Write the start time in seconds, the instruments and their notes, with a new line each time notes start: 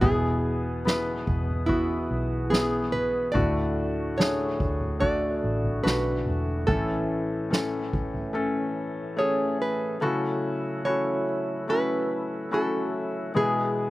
0.01 fingered electric bass E1, felt piano B2 B3 E4 G#4, tonewheel organ E3 B3 G#4, nylon-string guitar G#4, kick, floor tom
0.85 felt piano B3 E4 B4, snare
1.15 nylon-string guitar F#4
1.27 fingered electric bass E1, kick, floor tom
1.48 floor tom
1.66 felt piano B3 E4 F#4, nylon-string guitar E4, kick
2.11 fingered electric bass B1
2.50 felt piano B3 E4 G#4, nylon-string guitar G#4, snare
2.92 nylon-string guitar B4, floor tom
3.32 fingered electric bass D2, felt piano A2 A3 D4 F#4, tonewheel organ D3 A3 F#4, nylon-string guitar D5, kick, floor tom
4.18 felt piano A3 D4 G#4, nylon-string guitar C#5, snare
4.60 fingered electric bass D2, kick, floor tom
4.81 floor tom
4.99 felt piano A3 D4 F#4, nylon-string guitar D5, kick
5.44 fingered electric bass A1
5.64 floor tom
5.83 fingered electric bass B1, felt piano A3 D4 F#4, nylon-string guitar B4, snare
6.26 fingered electric bass E1, floor tom
6.67 fingered electric bass A1, felt piano A2 E3 A3 C#4 A4, tonewheel organ E3 C#4, nylon-string guitar A4, kick, floor tom
7.50 felt piano A3 C#4 A4, snare
7.93 kick, floor tom
8.14 floor tom
8.33 felt piano A3 C#4 A4
9.17 felt piano A3 C#4 G#4, nylon-string guitar C#5
9.62 nylon-string guitar B4
10.01 felt piano C#3 A3 C#4 E4 F#4, tonewheel organ F#3 E4 A4, nylon-string guitar A4
10.85 felt piano A3 C#4 E4 F#4, nylon-string guitar C#5
11.68 felt piano A3 C#4 E4 F#4, nylon-string guitar B4
12.51 felt piano A3 C#4 E4 F#4, nylon-string guitar A4
13.35 felt piano B2 G#3 B3 E4 G#4, tonewheel organ E3 B3 G#4, nylon-string guitar G#4